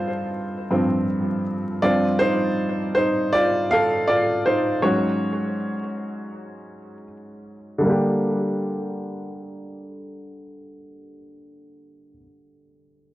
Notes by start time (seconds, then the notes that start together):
Already playing: G2 F3 C4 D#4 F4 A4 C5
0.71 G2 F3 C4
1.82 G2 F3 C4 F4 D5
2.19 D#4 C5
2.95 D#4 C5
3.33 F4 D5
3.71 A4 F5
4.07 F4 D5
4.46 D#4 C5
4.82 G#2 F#3 C#4 F#4 C#5
7.78 D3 G3
7.84 A#3 D4
7.90 G4